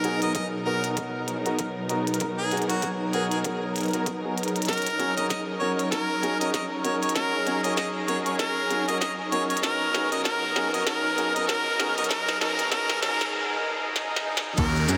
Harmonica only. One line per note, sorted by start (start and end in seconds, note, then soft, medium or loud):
0.00 0.19 A#4 medium
0.22 0.31 D#5 medium
0.35 0.47 D#5 medium
0.66 0.87 A#4 medium
2.38 2.56 G#4 medium
2.69 2.87 F#4 loud
3.14 3.25 G#4 medium
3.31 3.39 G#4 medium
4.68 5.13 A#4 medium
5.17 5.25 D#5 medium
5.29 5.41 D#5 medium
5.60 5.72 C#5 medium
5.78 5.87 C#5 medium
5.91 6.37 A#4 medium
6.40 6.49 D#5 medium
6.53 6.65 D#5 medium
6.84 6.96 C#5 medium
7.02 7.10 C#5 medium
7.15 7.60 A#4 medium
7.63 7.72 D#5 medium
7.76 7.88 D#5 medium
8.07 8.19 C#5 medium
8.26 8.34 C#5 medium
8.38 8.84 A#4 medium
8.88 8.96 D#5 medium
9.00 9.12 D#5 medium
9.32 9.43 C#5 medium
9.49 9.58 C#5 medium
9.62 10.08 A#4 medium
10.12 10.20 D#5 loud
10.24 10.70 A#4 medium
10.74 10.82 D#5 medium
10.86 11.32 A#4 medium
11.35 11.44 D#5 medium
11.47 11.93 A#4 loud
11.97 12.05 D#5 medium
12.09 12.38 A#4 medium
12.41 12.70 A#4 medium
12.71 13.01 A#4 loud
13.02 13.31 A#4 loud
14.57 14.97 A#4 medium